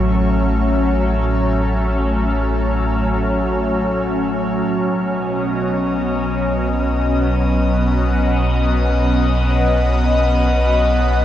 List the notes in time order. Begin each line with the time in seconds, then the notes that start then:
Already playing: A1 A2 F#3 A3 C#4 C#5 E5
4.67 B1 B2
5.04 B3 D#5
7.57 F#5